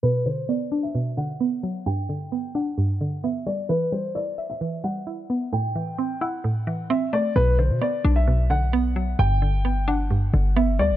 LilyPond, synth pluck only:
\new Staff \with { instrumentName = "Synth pluck" } { \clef bass \time 4/4 \key b \phrygian \tempo 4 = 131 b,8 d8 b8 d'8 b,8 d8 b8 fis8 | g,8 d8 b8 d'8 g,8 d8 b8 g8 | e8 g8 e'8 e''8 e8 g8 e'8 b8 | a,8 e8 c'8 e'8 a,8 e8 c'8 a8 |
b,8 d8 b8 d'8 b,8 d8 b8 fis8 | g,8 d8 b8 d'8 g,8 d8 b8 g8 | }